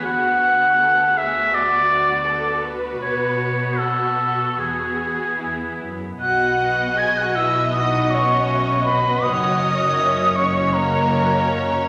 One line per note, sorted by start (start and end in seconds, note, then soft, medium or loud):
0.00 3.00 B3 medium
0.00 5.37 F#4 medium
0.00 0.79 F#4 medium
0.04 2.97 D2 medium
0.04 1.19 F#5 medium
0.76 1.15 A4 medium
1.15 1.51 G#4 medium
1.15 1.56 E5 medium
1.51 2.25 F#4 medium
1.51 2.74 D5 loud
2.26 2.63 A4 medium
2.65 3.79 B4 medium
3.01 4.55 B2 soft
3.01 5.97 B3 medium
3.01 3.79 C#5 medium
3.78 4.59 F#4 medium
3.78 4.60 A4 medium
4.59 5.33 E2 soft
4.59 5.82 G#4 soft
5.41 5.79 E2 soft
5.41 6.00 E4 soft
5.83 6.22 F#2 soft
6.20 9.20 B1 medium
6.20 9.21 B2 medium
6.20 9.20 B3 medium
6.20 11.88 F#4 medium
6.20 6.94 F#4 medium
6.20 9.20 D#5 medium
6.20 6.95 F#5 medium
6.20 7.00 F#6 medium
6.97 7.16 G#4 medium
6.97 7.18 G#5 medium
6.97 7.19 G#6 medium
7.18 7.37 F#4 medium
7.18 7.37 F#5 medium
7.18 7.37 F#6 medium
7.36 7.74 E4 medium
7.36 7.75 E5 medium
7.36 7.72 E6 medium
7.72 8.12 D#4 medium
7.72 8.11 D#5 medium
7.72 8.50 F#5 medium
7.72 8.12 D#6 medium
8.11 8.87 C#4 medium
8.11 8.87 C#5 medium
8.11 8.85 C#6 medium
8.48 8.88 E5 medium
8.85 9.25 B3 medium
8.85 9.24 B4 medium
8.85 9.25 D#5 medium
8.85 9.24 B5 medium
9.23 11.88 F#1 medium
9.23 11.88 F#2 medium
9.23 11.88 C#4 medium
9.23 11.88 C#5 medium
9.23 10.36 D#5 medium
9.23 9.62 F#5 medium
9.23 10.37 D#6 medium
9.27 10.38 D#3 medium
9.60 9.99 C#5 medium
9.97 10.37 E5 medium
10.35 10.73 C#4 medium
10.35 10.74 C#5 medium
10.35 11.88 D#5 medium
10.35 10.75 C#6 medium
10.73 11.85 A#3 medium
10.73 11.85 A#4 medium
10.73 11.85 A#5 medium